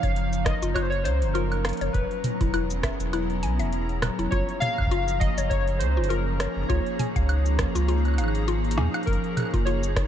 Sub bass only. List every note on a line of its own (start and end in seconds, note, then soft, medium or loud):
0.03 0.54 F#1 loud
0.63 1.07 F#1 medium
1.05 1.23 C#2 loud
1.22 1.72 F#1 loud
1.81 1.90 F#1 loud
1.94 2.05 E1 loud
2.41 2.91 E1 medium
3.00 3.44 E1 medium
3.43 3.61 B1 loud
3.60 4.10 E1 loud
4.19 4.28 E1 loud
4.32 4.43 F#1 loud
4.78 5.29 F#1 loud
5.38 5.82 F#1 medium
5.80 5.99 C#2 loud
5.97 6.48 F#1 loud
6.57 6.65 F#1 loud
6.70 6.81 C#2 loud
7.16 7.66 C#2 loud
7.75 8.20 C#2 medium
8.18 8.79 G#1 medium
8.78 8.89 F2 medium
9.07 9.18 F#1 loud
9.54 10.04 F#1 medium